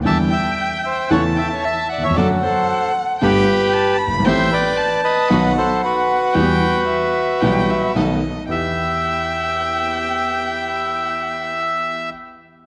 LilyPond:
<<
  \new Staff \with { instrumentName = "Violin" } { \time 4/4 \key e \minor \tempo 4 = 114 g''2 a''4 e''4 | fis''2 g''4 a''8 b''8 | g''4 a''4 fis''4 fis''4 | g''4 e''4 g''8 e''8 dis''4 |
g''1~ | g''1 | }
  \new Staff \with { instrumentName = "Bandoneon" } { \time 4/4 \key e \minor <e'' a''>8 <e'' g''>4 <c'' e''>8 <cis'' fis''>8 <e'' g''>16 <cis'' e''>16 <e'' a''>8 <d'' fis''>16 <cis'' e''>16 | <a' d''>8 <a' c''>4 r8 <g' b'>4. r8 | <c'' e''>8 <b' d''>4 <b' dis''>4 <a' c''>8 <fis' b'>4~ | <fis' b'>2. r4 |
e''1~ | e''1 | }
  \new Staff \with { instrumentName = "String section" } { \time 4/4 \key e \minor <d' e' g'>8 r4. <e cis' e' a'>8 r4. | <fis d' fis' a'>8 r4. <b g' a'>8 r4. | <c' g' a'>8 r4. <b dis' fis'>8 r4. | <b e' g'>8 r4. <b e' g'>8 r8 <b dis' a'>8 r8 |
<b e' g'>1~ | <b e' g'>1 | }
  \new Staff \with { instrumentName = "Grand piano" } { \clef bass \time 4/4 \key e \minor <e, d e g b e'>8 r4. <e, cis e a e'>8 r4 r32 dis,32 e,32 f,32 | <fis, d fis a fis'>8 r4. <g,, g, d a b g'>8 r4 r32 fis,,32 g,,32 gis,,32 | <a,, a, e a c' g'>8 r4. <b,, b, dis fis b fis'>8 r4. | <e, e g b g'>8 r4. <b,, b, e g b g'>8 r8 <b,, b, dis a b fis'>8 r8 |
<e, b e' g'>1~ | <e, b e' g'>1 | }
>>